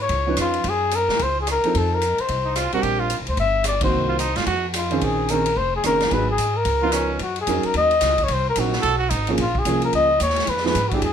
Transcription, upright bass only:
0.09 C#2
0.37 F2
0.64 F#2
1.09 C#3
1.19 C#2
1.75 F2
2.19 muted upright bass stroke
2.29 C2
2.73 C2
2.83 A#1
3.20 C2
3.28 D2
3.37 G1
3.92 C2
4.36 F#2
4.47 F2
5.02 A#1
5.56 F1
5.84 F#1
6.12 G#1
6.38 G#2
6.65 C#2
7.20 F#2
7.47 F2
7.64 muted upright bass stroke
7.74 D#2
8.01 C#2
8.29 C2
8.56 A#1
8.84 B1
9.11 G#1
9.38 A#1
9.65 C2
9.93 C#2
10.20 D#2
10.48 F2
10.75 G#2
11.02 E2

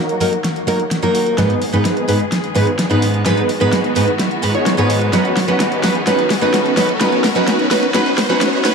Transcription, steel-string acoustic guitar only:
0.20 F#3 A#3 D#4 A#4
0.67 F#3 A#3 D#4 A#4
1.02 F#3 A#3 D#4 A#4
1.37 G#2 G#3 B3 D#4 B4
1.72 G#2 G#3 B3 D#4 B4
2.08 G#2 G#3 B3 D#4 B4
2.55 G#2 G#3 B3 D#4 B4
2.90 G#2 G#3 B3 D#4 B4
3.25 G#2 G#3 B3 D#4 B4
3.60 G#2 G#3 B3 D#4 B4
3.95 G#2 G#3 B3 D#4 B4
4.42 G#2 G#3 B3 D#4 B4
4.77 G#2 G#3 B3 D#4 B4
5.12 F#3 C#4 D#4 B4
5.48 F#3 C#4 D#4 B4
5.83 F#3 C#4 D#4 B4
6.06 F#3 C#4 D#4 B4
6.41 F#3 C#4 D#4 B4
6.76 F#3 C#4 D#4 B4
7.00 F#3 C#4 D#4 B4
7.35 F#3 C#4 D#4 B4
7.70 F#3 C#4 D#4 B4
7.94 F#3 C#4 D#4 B4
8.29 F#3 C#4 D#4 B4
8.64 F#3 C#4 D#4 B4

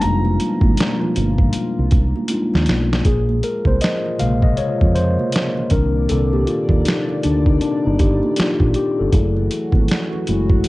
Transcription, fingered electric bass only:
0.03 F1
0.62 G#1
1.17 G1
1.79 C2
2.55 D#2
2.69 B1
3.06 A#1
3.66 C2
4.21 A#1
4.60 muted fingered electric bass stroke
4.82 F2
5.72 C2
6.11 C2
6.70 D#2
7.25 D2
7.63 muted fingered electric bass stroke
7.87 G1
8.39 muted fingered electric bass stroke
8.61 A#1
9.00 G1
9.13 F#1
9.73 G#1
10.28 F#1

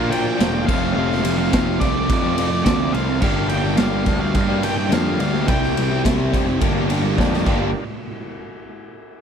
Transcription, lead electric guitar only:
Already playing: F5
0.11 G5
0.67 F5
0.94 F5
1.38 F5
1.80 D5
2.65 D5
2.93 F5
3.22 F5
3.49 G5
3.77 F5
4.20 F5
4.64 G5
4.78 G5
4.94 F5
5.20 F5
5.48 G5

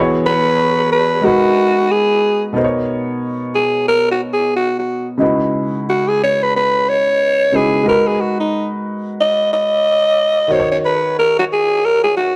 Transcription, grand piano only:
Already playing: E3 B3 F#4 G#4
0.00 C#5
1.21 G#3 D#4 F#4 A#4
1.26 B4
2.53 B2 B3 D#4 A#4
2.57 C5
2.64 C#5
5.18 C#3 G#3 D#4 E4 F#4
5.22 B4
7.52 C#3 G#3 D#4 E4 F#4 B4
7.83 G#3 D#4 F#4 A#4
7.88 B4
10.48 D#3 D#4 F#4
10.53 C5
10.60 C#5

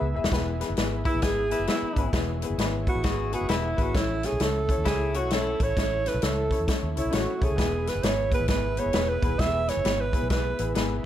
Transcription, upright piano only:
0.15 B3 E4 G#4 B4 E5
0.31 E3 B3 E4 G#4 B4
0.60 B3 E4 G#4 B4
0.76 B3 E4 G#4 B4
1.06 B3 E4 G#4 B4
1.21 B3 E4 G#4 B4
1.51 B3 E4 G#4 B4
1.67 B3 E4 G#4 B4
1.96 B3 E4 G#4 B4
2.12 E3 B3 E4 G#4 B4
2.42 B3 E4 G#4 B4
2.58 B3 E4 G#4 B4
2.87 B3 E4 G#4 B4
3.03 B3 E4 G#4 B4
3.32 B3 E4 G#4 B4
3.48 B3 E4 G#4 B4
3.77 B3 E4 G#4 B4
3.93 A2 C#4 E4 A4 C#5
4.24 C#4 E4 A4 C#5
4.40 C#4 E4 A4 C#5
4.69 C#4 E4 A4 C#5
4.85 C#4 E4 A4 C#5
5.15 C#4 E4 A4 C#5
5.31 C#4 E4 A4 C#5
5.61 C#4 E4 A4 C#5
5.77 A2 C#4 E4 A4 C#5
6.05 C#4 E4 A4 C#5
6.22 C#4 E4 A4 C#5
6.50 C#4 E4 A4 C#5
6.67 C#4 E4 A4 C#5
6.96 C#4 E4 A4 C#5
7.11 C#4 E4 A4 C#5
7.41 C#4 E4 A4 C#5
7.56 E3 B3 E4 G#4 B4
7.86 B3 E4 G#4 B4
8.03 B3 E4 G#4 B4
8.32 B3 E4 G#4 B4
8.49 B3 E4 G#4 B4
8.77 B3 E4 G#4 B4
8.93 B3 E4 G#4 B4
9.22 B3 E4 G#4 B4
9.39 E3 B3 E4 G#4 B4
9.67 B3 E4 G#4 B4
9.84 B3 E4 G#4 B4
10.13 B3 E4 G#4 B4
10.29 B3 E4 G#4 B4
10.59 B3 E4 G#4 B4
10.75 B3 E4 G#4 B4

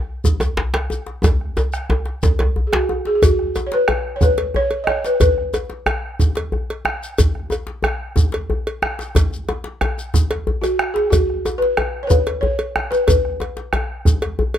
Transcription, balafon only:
2.67 G#4
2.74 F#4
3.07 G#4
3.15 G#4
3.24 F#4
3.67 C#5
3.74 B4
4.16 C#5
4.23 B4
4.56 C#5
4.84 D#5
4.88 C#5
5.06 B4
5.21 B4
10.62 F#4
10.94 G#4
11.10 F#4
11.58 B4
12.03 C#5
12.07 B4
12.41 C#5
12.91 B4
13.07 B4

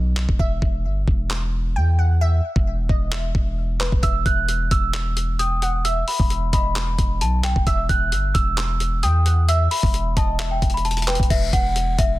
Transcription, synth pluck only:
Already playing: D#5
0.40 E5
1.76 G5
1.99 F#5
2.21 E5
2.90 D#5
3.13 E5
3.80 B4
4.03 E5
5.39 G5
5.63 F#5
5.85 E5
6.53 D#5
7.67 E5
9.03 G5
9.26 F#5
9.49 E5
10.17 D#5
10.40 E5
11.07 B4

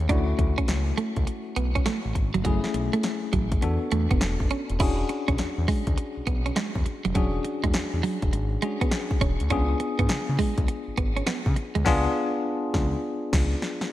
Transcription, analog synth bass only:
0.10 D2
0.39 D2
0.69 C#2
1.17 C#2
1.57 B1
2.06 A1
2.16 G#1
2.35 G1
2.45 F#1
2.75 B1
3.33 A1
3.63 E2
3.92 E2
4.11 F#1
4.22 E1
4.40 F#1
4.70 E1
4.80 E1
5.29 B1
5.39 E2
5.58 E2
5.87 D2
6.17 B1
6.27 B1
6.76 E2
7.06 F1
7.15 E1
7.64 E2
7.75 E2
7.94 E2
8.23 E1
8.34 G#1
9.21 E1
9.41 D2
9.51 C#2
9.99 G#2
10.10 C#3
10.29 C#3
10.58 C#2
10.88 G#1
10.98 G#1
11.46 C#3
11.76 D2
11.86 C#2
12.74 C#2
13.33 C#2

